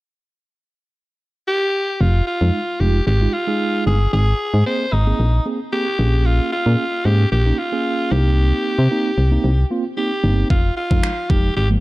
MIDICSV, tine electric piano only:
0, 0, Header, 1, 2, 480
1, 0, Start_track
1, 0, Key_signature, -4, "minor"
1, 0, Tempo, 530973
1, 1815, Time_signature, 4, 2, 24, 8
1, 10669, End_track
2, 0, Start_track
2, 0, Title_t, "Tine electric piano"
2, 0, Program_c, 0, 4
2, 2179, Note_on_c, 0, 56, 74
2, 2181, Note_on_c, 0, 63, 66
2, 2183, Note_on_c, 0, 65, 81
2, 2339, Note_off_c, 0, 56, 0
2, 2340, Note_off_c, 0, 63, 0
2, 2341, Note_off_c, 0, 65, 0
2, 2533, Note_on_c, 0, 56, 80
2, 2536, Note_on_c, 0, 63, 72
2, 2538, Note_on_c, 0, 65, 90
2, 2702, Note_off_c, 0, 56, 0
2, 2703, Note_off_c, 0, 63, 0
2, 2704, Note_off_c, 0, 65, 0
2, 2901, Note_on_c, 0, 56, 77
2, 2903, Note_on_c, 0, 63, 69
2, 2905, Note_on_c, 0, 65, 81
2, 3004, Note_off_c, 0, 56, 0
2, 3005, Note_off_c, 0, 63, 0
2, 3006, Note_off_c, 0, 65, 0
2, 3140, Note_on_c, 0, 56, 78
2, 3143, Note_on_c, 0, 63, 74
2, 3145, Note_on_c, 0, 68, 90
2, 3573, Note_off_c, 0, 56, 0
2, 3575, Note_off_c, 0, 63, 0
2, 3576, Note_off_c, 0, 68, 0
2, 4214, Note_on_c, 0, 58, 75
2, 4216, Note_on_c, 0, 60, 66
2, 4218, Note_on_c, 0, 68, 83
2, 4382, Note_off_c, 0, 58, 0
2, 4383, Note_off_c, 0, 60, 0
2, 4384, Note_off_c, 0, 68, 0
2, 4582, Note_on_c, 0, 58, 72
2, 4584, Note_on_c, 0, 60, 67
2, 4586, Note_on_c, 0, 68, 82
2, 4741, Note_off_c, 0, 58, 0
2, 4741, Note_off_c, 0, 60, 0
2, 4743, Note_off_c, 0, 68, 0
2, 4933, Note_on_c, 0, 58, 70
2, 4935, Note_on_c, 0, 60, 69
2, 4938, Note_on_c, 0, 68, 80
2, 5050, Note_off_c, 0, 58, 0
2, 5050, Note_off_c, 0, 60, 0
2, 5052, Note_off_c, 0, 68, 0
2, 5175, Note_on_c, 0, 58, 68
2, 5177, Note_on_c, 0, 60, 65
2, 5180, Note_on_c, 0, 68, 76
2, 5291, Note_off_c, 0, 58, 0
2, 5291, Note_off_c, 0, 60, 0
2, 5293, Note_off_c, 0, 68, 0
2, 5414, Note_on_c, 0, 58, 77
2, 5417, Note_on_c, 0, 61, 69
2, 5418, Note_on_c, 0, 68, 85
2, 5895, Note_off_c, 0, 58, 0
2, 5896, Note_off_c, 0, 61, 0
2, 5897, Note_off_c, 0, 68, 0
2, 6020, Note_on_c, 0, 58, 76
2, 6023, Note_on_c, 0, 61, 71
2, 6026, Note_on_c, 0, 68, 86
2, 6180, Note_off_c, 0, 58, 0
2, 6181, Note_off_c, 0, 61, 0
2, 6183, Note_off_c, 0, 68, 0
2, 6373, Note_on_c, 0, 58, 79
2, 6375, Note_on_c, 0, 61, 77
2, 6377, Note_on_c, 0, 68, 93
2, 6542, Note_off_c, 0, 58, 0
2, 6543, Note_off_c, 0, 61, 0
2, 6544, Note_off_c, 0, 68, 0
2, 6742, Note_on_c, 0, 58, 76
2, 6744, Note_on_c, 0, 61, 72
2, 6746, Note_on_c, 0, 63, 87
2, 6844, Note_off_c, 0, 58, 0
2, 6845, Note_off_c, 0, 61, 0
2, 6847, Note_off_c, 0, 63, 0
2, 6980, Note_on_c, 0, 58, 77
2, 6983, Note_on_c, 0, 61, 73
2, 6985, Note_on_c, 0, 68, 90
2, 7323, Note_off_c, 0, 58, 0
2, 7334, Note_on_c, 0, 58, 74
2, 7336, Note_off_c, 0, 61, 0
2, 7336, Note_on_c, 0, 60, 72
2, 7337, Note_off_c, 0, 68, 0
2, 7338, Note_on_c, 0, 63, 82
2, 7916, Note_off_c, 0, 58, 0
2, 7918, Note_off_c, 0, 60, 0
2, 7919, Note_off_c, 0, 63, 0
2, 8055, Note_on_c, 0, 58, 86
2, 8057, Note_on_c, 0, 60, 78
2, 8059, Note_on_c, 0, 63, 94
2, 8223, Note_off_c, 0, 58, 0
2, 8224, Note_off_c, 0, 60, 0
2, 8225, Note_off_c, 0, 63, 0
2, 8420, Note_on_c, 0, 58, 88
2, 8422, Note_on_c, 0, 60, 81
2, 8425, Note_on_c, 0, 63, 94
2, 8580, Note_off_c, 0, 58, 0
2, 8581, Note_off_c, 0, 60, 0
2, 8582, Note_off_c, 0, 63, 0
2, 8773, Note_on_c, 0, 58, 84
2, 8775, Note_on_c, 0, 60, 81
2, 8778, Note_on_c, 0, 65, 94
2, 8889, Note_off_c, 0, 58, 0
2, 8890, Note_off_c, 0, 60, 0
2, 8892, Note_off_c, 0, 65, 0
2, 9015, Note_on_c, 0, 58, 70
2, 9016, Note_on_c, 0, 60, 64
2, 9019, Note_on_c, 0, 63, 76
2, 9130, Note_off_c, 0, 58, 0
2, 9131, Note_off_c, 0, 60, 0
2, 9133, Note_off_c, 0, 63, 0
2, 9253, Note_on_c, 0, 58, 80
2, 9256, Note_on_c, 0, 60, 74
2, 9258, Note_on_c, 0, 63, 89
2, 9494, Note_off_c, 0, 58, 0
2, 9496, Note_off_c, 0, 60, 0
2, 9497, Note_off_c, 0, 63, 0
2, 9862, Note_on_c, 0, 53, 76
2, 9864, Note_on_c, 0, 56, 71
2, 9867, Note_on_c, 0, 63, 87
2, 10021, Note_off_c, 0, 53, 0
2, 10022, Note_off_c, 0, 56, 0
2, 10023, Note_off_c, 0, 63, 0
2, 10213, Note_on_c, 0, 53, 81
2, 10216, Note_on_c, 0, 56, 74
2, 10218, Note_on_c, 0, 63, 94
2, 10382, Note_off_c, 0, 53, 0
2, 10383, Note_off_c, 0, 56, 0
2, 10384, Note_off_c, 0, 63, 0
2, 10579, Note_on_c, 0, 53, 76
2, 10581, Note_on_c, 0, 56, 70
2, 10584, Note_on_c, 0, 58, 83
2, 10669, Note_off_c, 0, 53, 0
2, 10669, Note_off_c, 0, 56, 0
2, 10669, Note_off_c, 0, 58, 0
2, 10669, End_track
0, 0, End_of_file